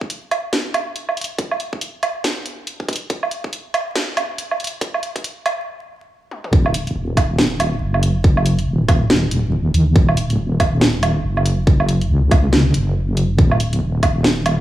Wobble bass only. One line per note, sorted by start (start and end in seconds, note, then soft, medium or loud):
6.53 6.94 D#1 loud
6.96 7.80 D#1 medium
7.81 8.66 F#1 loud
8.67 9.30 D#1 loud
9.31 9.73 D#1 loud
9.74 9.94 D#2 loud
9.96 10.37 D#1 loud
10.38 11.23 D#1 loud
11.24 12.08 F#1 medium
12.10 12.73 C#2 loud
12.74 13.37 F#1 medium
13.38 13.80 D#1 loud
13.81 14.60 D#1 loud